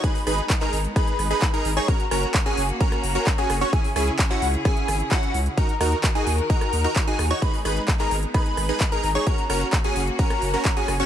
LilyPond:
<<
  \new Staff \with { instrumentName = "Digital synth lead" } { \time 4/4 \key gis \minor \tempo 4 = 130 b''16 r16 b''16 r8 ais''16 r8 b''8. b''8 ais''16 r16 cis'''16 | ais''16 r16 ais''16 r8 gis''16 r8 ais''8. ais''8 gis''16 r16 cis'''16 | gis''16 r16 gis''16 r8 fis''16 r8 gis''8. r16 fis''8 r8 | ais''16 r16 ais''16 r8 gis''16 r8 ais''8. ais''8 gis''16 r16 cis'''16 |
b''16 r16 b''16 r8 ais''16 r8 b''8. b''8 ais''16 r16 cis'''16 | ais''16 r16 ais''16 r8 gis''16 r8 ais''8. ais''8 gis''16 r16 cis'''16 | }
  \new Staff \with { instrumentName = "Supersaw synth" } { \time 4/4 \key gis \minor <dis' gis' b'>16 r16 <dis' gis' b'>16 r8 <dis' gis' ais'>16 r8 <dis' gis' b'>8. <dis' gis' b'>8 <dis' gis' ais'>16 r16 <dis' gis' cis''>16 | <cis' fis' ais'>16 r16 <cis' fis' ais'>16 r8 <cis' fis' gis'>16 r8 <cis' fis' ais'>8. <cis' fis' ais'>8 <cis' fis' gis'>16 r16 <cis' fis' cis''>16 | <cis' e' gis'>16 r16 <cis' e' gis'>16 r8 <cis' e' fis'>16 r8 <cis' e' gis'>8. r16 <cis' e' fis'>8 r8 | <dis' fis' ais'>16 r16 <dis' fis' ais'>16 r8 <dis' fis' gis'>16 r8 <dis' fis' ais'>8. <dis' fis' ais'>8 <dis' fis' gis'>16 r16 <dis' fis' cis''>16 |
<dis' gis' b'>16 r16 <dis' gis' b'>16 r8 <dis' gis' ais'>16 r8 <dis' gis' b'>8. <dis' gis' b'>8 <dis' gis' ais'>16 r16 <dis' gis' cis''>16 | <cis' fis' ais'>16 r16 <cis' fis' ais'>16 r8 <cis' fis' gis'>16 r8 <cis' fis' ais'>8. <cis' fis' ais'>8 <cis' fis' gis'>16 r16 <cis' fis' cis''>16 | }
  \new Staff \with { instrumentName = "String section" } { \time 4/4 \key gis \minor <gis b dis'>1 | <ais cis' fis'>1 | <cis e' gis'>1 | <dis dis' fis' ais'>1 |
<gis b>1 | <ais cis' fis'>1 | }
  \new Staff \with { instrumentName = "Sub bass" } { \clef bass \time 4/4 \key gis \minor r8 gis,,8 r8 gis,,8 r8 gis,,8 r8 gis,,8 | r8 fis,,8 r8 fis,,8 r8 fis,,8 r8 fis,,8 | r8 cis,8 r8 cis,8 r8 gis,,8 r8 cis,8 | r8 dis,8 r8 dis,8 r8 dis,8 r8 dis,8 |
r8 gis,,8 r8 gis,,8 r8 gis,,8 r8 gis,,8 | r8 fis,,8 r8 fis,,8 r8 fis,,8 r8 fis,,8 | }
  \new DrumStaff \with { instrumentName = "Drums" } \drummode { \time 4/4 <hh bd>16 hho16 <hho ss>16 hh16 <hc hh bd>16 <hc hh>16 hho16 hh16 <hh bd ss>16 hh16 <hho ss>16 hh16 <hc hh bd>16 hh16 hho16 hh16 | <hh bd>16 hh16 <hho ss>16 hh16 <hc hh bd>16 hh16 hho16 hh16 <hh bd>16 <hh ss>16 hho16 hh16 <hc hh bd>16 hh16 <hho ss>16 hh16 | <hh bd>16 hho16 <hho ss>16 hh16 <hc hh bd>16 <hc hh>16 hho16 hh16 <hh bd ss>16 hh16 <hho ss>16 hh16 <hc hh bd>16 hh16 hho16 hh16 | <hh bd>16 hh16 <hho ss>16 hh16 <hc hh bd>16 hh16 hho16 hh16 <hh bd>16 <hh ss>16 hho16 hh16 <hc hh bd>16 hh16 <hho ss>16 hh16 |
<hh bd>16 hho16 <hho ss>16 hh16 <hc hh bd>16 <hc hh>16 hho16 hh16 <hh bd ss>16 hh16 <hho ss>16 hh16 <hc hh bd>16 hh16 hho16 hh16 | <hh bd>16 hh16 <hho ss>16 hh16 <hc hh bd>16 hh16 hho16 hh16 <hh bd>16 <hh ss>16 hho16 hh16 <hc hh bd>16 hh16 <hho ss>16 hh16 | }
>>